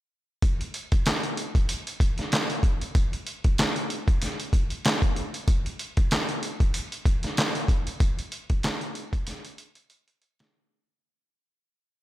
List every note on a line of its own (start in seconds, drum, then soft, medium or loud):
0.42 kick loud
0.42 closed hi-hat medium
0.61 closed hi-hat medium
0.74 closed hi-hat medium
0.92 kick medium
0.92 closed hi-hat medium
1.06 snare loud
1.06 clap medium
1.06 closed hi-hat loud
1.24 closed hi-hat medium
1.37 closed hi-hat medium
1.55 kick medium
1.55 closed hi-hat medium
1.69 closed hi-hat loud
1.87 closed hi-hat medium
2.00 kick loud
2.00 closed hi-hat medium
2.18 snare soft
2.18 closed hi-hat medium
2.32 snare loud
2.32 clap loud
2.32 closed hi-hat medium
2.50 closed hi-hat medium
2.63 kick loud
2.63 closed hi-hat medium
2.81 closed hi-hat medium
2.95 kick loud
2.95 closed hi-hat medium
3.13 closed hi-hat medium
3.27 closed hi-hat medium
3.44 kick medium
3.44 closed hi-hat medium
3.58 snare loud
3.58 clap medium
3.58 closed hi-hat loud
3.76 closed hi-hat medium
3.90 closed hi-hat medium
4.08 kick loud
4.08 closed hi-hat medium
4.22 snare soft
4.22 closed hi-hat loud
4.40 closed hi-hat medium
4.53 kick medium
4.53 closed hi-hat medium
4.70 closed hi-hat medium
4.85 snare loud
4.85 clap loud
4.85 closed hi-hat medium
5.02 kick loud
5.02 closed hi-hat medium
5.16 closed hi-hat medium
5.34 closed hi-hat medium
5.48 kick loud
5.48 closed hi-hat medium
5.66 closed hi-hat medium
5.79 closed hi-hat medium
5.97 kick medium
5.97 closed hi-hat medium
6.11 snare loud
6.11 clap medium
6.11 closed hi-hat loud
6.29 closed hi-hat medium
6.43 closed hi-hat medium
6.60 kick medium
6.60 closed hi-hat medium
6.74 closed hi-hat loud
6.92 closed hi-hat medium
7.06 kick loud
7.06 closed hi-hat medium
7.23 snare soft
7.23 closed hi-hat medium
7.37 snare loud
7.37 clap loud
7.37 closed hi-hat medium
7.55 closed hi-hat medium
7.68 kick loud
7.68 closed hi-hat medium
7.87 closed hi-hat medium
8.00 kick loud
8.00 closed hi-hat medium
8.19 closed hi-hat medium
8.32 closed hi-hat medium
8.50 kick medium
8.50 closed hi-hat medium
8.63 snare loud
8.63 clap medium
8.63 closed hi-hat loud
8.81 closed hi-hat medium
8.95 closed hi-hat medium
9.13 kick loud
9.13 closed hi-hat medium
9.27 snare soft
9.27 closed hi-hat loud
9.45 closed hi-hat medium
9.58 closed hi-hat medium
9.75 closed hi-hat medium
9.90 closed hi-hat medium
10.08 closed hi-hat medium
10.22 closed hi-hat medium
10.39 snare medium
10.39 closed hi-hat medium